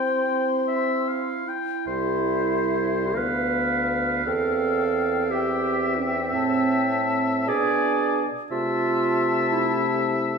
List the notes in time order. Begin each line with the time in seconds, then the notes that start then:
Already playing: C4 E4 C5 G5 C6
0.68 E5
1.08 F5
1.46 E4 G5
1.86 C2 G3 C5 E5
3.14 D2 B3 B4 F5
4.25 E2 C4 A4 G5
5.31 G4 E5
6.01 C4
6.34 A2 A5
7.48 B2 D4 G#4 D5 G#5
8.51 C3 A3 F4 E5 A5
9.52 E4